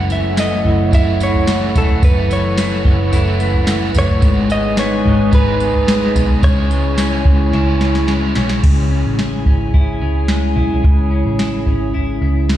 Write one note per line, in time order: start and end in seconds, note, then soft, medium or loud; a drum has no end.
0.00 0.61 F#1 loud
0.00 0.92 F#2 medium
0.00 2.01 F#2 medium
0.00 0.90 C#3 medium
0.00 0.92 E3 medium
0.00 0.93 A3 medium
0.00 0.93 E4 medium
0.00 0.95 E4 medium
0.00 4.19 E4 medium
0.00 4.19 A4 medium
0.00 2.01 C#5 medium
0.00 4.19 F#5 medium
0.10 0.64 E3 medium
0.10 0.39 E5 medium
0.10 tambourine medium
0.37 1.19 A3 medium
0.37 0.94 D#5 medium
0.37 snare loud
0.37 tambourine medium
0.65 0.91 F#1 medium
0.65 1.46 E3 medium
0.65 floor tom medium
0.91 1.71 F#1 loud
0.91 1.45 C#3 medium
0.91 1.47 E3 medium
0.91 1.49 A3 medium
0.91 3.11 E4 medium
0.91 1.22 E5 medium
0.91 kick loud
0.91 floor tom medium
0.91 tambourine medium
0.96 1.50 E4 medium
1.20 1.74 A3 medium
1.20 1.79 C#5 medium
1.20 tambourine medium
1.34 floor tom medium
1.46 2.02 C#3 medium
1.46 2.29 E3 medium
1.46 2.03 E3 medium
1.46 2.04 A3 medium
1.46 snare loud
1.46 tambourine medium
1.52 2.04 E4 medium
1.75 2.02 E1 medium
1.75 2.56 A3 medium
1.75 2.04 A4 medium
1.75 floor tom medium
1.75 tambourine medium
1.88 floor tom medium
2.02 2.81 F#1 loud
2.02 2.58 F#2 medium
2.02 4.22 F#2 medium
2.02 2.55 C#3 medium
2.02 2.57 E3 medium
2.02 2.59 A3 medium
2.02 2.59 E4 medium
2.02 4.21 B4 medium
2.02 2.32 B4 medium
2.02 kick loud
2.02 floor tom loud
2.02 tambourine medium
2.30 2.84 E3 medium
2.30 3.38 C#5 medium
2.30 tambourine medium
2.57 3.10 C#3 soft
2.57 3.12 E3 medium
2.57 3.38 A3 medium
2.57 3.14 A3 medium
2.57 snare loud
2.57 tambourine medium
2.62 3.15 E4 medium
2.85 3.11 F#1 loud
2.85 3.66 E3 medium
2.85 kick loud
2.85 floor tom medium
3.11 3.92 F#1 medium
3.11 3.65 C#3 medium
3.11 3.67 E3 medium
3.11 3.68 A3 medium
3.11 4.28 E4 medium
3.11 floor tom medium
3.11 tambourine medium
3.17 3.70 E4 medium
3.40 3.94 A3 medium
3.40 tambourine medium
3.54 floor tom medium
3.66 4.22 C#3 medium
3.66 4.28 E3 medium
3.66 4.23 E3 medium
3.66 4.24 A3 medium
3.66 snare loud
3.66 tambourine medium
3.71 4.25 E4 medium
3.94 4.22 F#1 loud
3.94 4.29 A3 medium
3.94 floor tom medium
3.94 tambourine medium
3.99 4.51 C#5 medium
4.08 floor tom medium
4.20 5.01 G#1 loud
4.20 5.32 G#2 medium
4.20 6.43 G#2 medium
4.20 5.30 D#3 medium
4.20 6.41 D#4 medium
4.20 8.59 G#4 medium
4.20 6.40 B4 medium
4.20 6.41 G#5 medium
4.20 kick loud
4.20 floor tom loud
4.20 tambourine medium
4.24 5.33 G#3 medium
4.24 5.33 B3 medium
4.24 5.35 D#4 medium
4.50 5.04 G#3 medium
4.50 4.79 D#5 loud
4.50 tambourine medium
4.77 5.59 B3 medium
4.77 5.34 C#5 medium
4.77 snare loud
4.77 tambourine medium
5.05 5.32 G#1 loud
5.05 5.88 G#3 medium
5.05 floor tom medium
5.31 6.12 G#1 loud
5.31 5.85 D#3 medium
5.31 5.88 G#3 medium
5.31 5.89 B3 medium
5.31 6.49 D#4 medium
5.31 6.13 B4 medium
5.31 kick loud
5.31 floor tom medium
5.31 tambourine medium
5.36 5.90 D#4 medium
5.60 6.14 B3 medium
5.60 tambourine medium
5.75 floor tom medium
5.86 6.42 D#3 medium
5.86 6.70 G#3 medium
5.86 6.44 G#3 medium
5.86 6.44 B3 medium
5.86 snare loud
5.86 tambourine medium
5.91 6.45 D#4 medium
6.15 6.42 B1 medium
6.15 6.49 B3 medium
6.15 floor tom medium
6.15 tambourine medium
6.29 floor tom medium
6.42 7.22 C#2 loud
6.42 6.96 C#3 medium
6.42 8.63 C#3 medium
6.42 6.99 G#3 medium
6.42 7.00 C#4 medium
6.42 8.61 E4 medium
6.42 7.02 E4 medium
6.42 8.61 C#5 medium
6.42 8.05 C#5 loud
6.42 8.61 G#5 medium
6.42 kick loud
6.42 floor tom loud
6.42 tambourine medium
6.70 7.25 G#3 medium
6.70 tambourine medium
6.97 7.51 C#3 medium
6.97 7.54 G#3 medium
6.97 7.80 C#4 medium
6.97 7.56 C#4 medium
6.97 snare loud
6.97 tambourine medium
7.02 7.57 E4 medium
7.25 7.52 C#2 medium
7.25 8.08 G#3 medium
7.25 kick medium
7.25 floor tom medium
7.52 8.32 C#2 loud
7.52 8.06 C#3 medium
7.52 8.08 G#3 medium
7.52 8.10 C#4 medium
7.52 9.19 E4 medium
7.52 snare medium
7.58 8.12 E4 medium
7.81 8.36 C#4 medium
7.81 snare medium
7.95 snare medium
8.07 8.63 C#3 medium
8.07 10.28 G#3 medium
8.07 9.15 G#3 medium
8.07 9.15 C#4 medium
8.07 snare medium
8.12 9.15 E4 medium
8.35 8.62 B1 medium
8.35 8.91 C#4 medium
8.35 snare loud
8.49 snare medium
8.64 9.03 C#2 medium
8.64 10.82 C#3 medium
8.64 12.57 E4 medium
8.64 12.57 G#4 medium
8.64 12.57 C#5 medium
8.64 12.57 G#5 medium
8.64 kick medium
8.64 floor tom medium
8.64 crash medium
8.91 9.46 C#4 medium
9.06 9.45 A1 medium
9.19 9.74 E4 medium
9.19 snare loud
9.46 9.98 G#1 medium
9.46 10.01 C#4 soft
9.46 kick medium
9.46 floor tom medium
9.74 10.56 E4 medium
9.74 kick medium
9.74 floor tom medium
10.01 10.54 C#2 medium
10.01 11.11 C#4 medium
10.28 12.49 G#3 medium
10.28 snare loud
10.56 10.82 B1 medium
10.56 11.38 E4 medium
10.56 floor tom medium
10.70 floor tom medium
10.83 11.23 C#2 loud
10.83 12.57 C#3 medium
10.83 kick loud
10.83 floor tom medium
11.11 11.66 C#4 medium
11.25 11.64 A1 medium
11.39 11.94 E4 medium
11.39 snare loud
11.66 12.19 G#1 medium
11.66 12.22 C#4 medium
11.66 kick medium
11.66 floor tom medium
11.94 12.57 E4 medium
11.94 floor tom medium
12.21 12.57 C#2 medium
12.21 12.57 C#4 medium
12.49 12.57 G#3 medium
12.49 snare loud